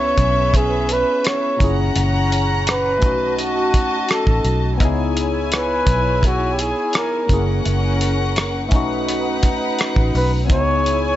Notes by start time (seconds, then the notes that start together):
Already playing: C#2 B3 C#4 E4 G#4 B4 C#5 E5
0.17 B1, kick, closed hi-hat
0.54 G#4, kick, closed hi-hat
0.89 B4, closed hi-hat
1.24 C#5, cross-stick, closed hi-hat
1.57 F#1 A#2 C#4, kick
1.61 C#4 E4 G#4 F#5 A#5, closed hi-hat
1.96 F#1, closed hi-hat
2.32 closed hi-hat
2.67 cross-stick, closed hi-hat
2.71 B4
2.98 A3 C#4 D#5, closed hi-hat
3.02 B1 D#4 F#4 A5, kick
3.39 F#4, closed hi-hat
3.74 kick, closed hi-hat
4.09 A4, cross-stick, closed hi-hat
4.27 A1, kick
4.45 B1, closed hi-hat
4.77 C#2 B3 D#4 E4 C#5 G#5, kick, closed hi-hat
4.82 E4 G#4
5.17 closed hi-hat
5.52 cross-stick, closed hi-hat
5.56 B4
5.87 B1, kick, closed hi-hat
6.23 F#4, kick, closed hi-hat
6.54 G4
6.59 G#4, closed hi-hat
6.93 A#4, cross-stick, closed hi-hat
7.26 F#1 A3 C#4 A#4 F#5, kick, closed hi-hat
7.31 A#3 E4 G#4
7.66 F#1, closed hi-hat
8.01 closed hi-hat
8.36 cross-stick, closed hi-hat
8.69 B1 A3 C#4 D#4 B4 F#5, kick, closed hi-hat
8.74 D#4 F#4
9.09 closed hi-hat
9.43 kick, closed hi-hat
9.79 cross-stick, closed hi-hat
9.96 A1, kick
10.15 B1 B4, open hi-hat
10.47 C#2 B3 D#4 E4 C#5 G#5, kick, closed hi-hat
10.51 E4 F#4 C#5
10.60 G#4
10.86 closed hi-hat
11.06 C#5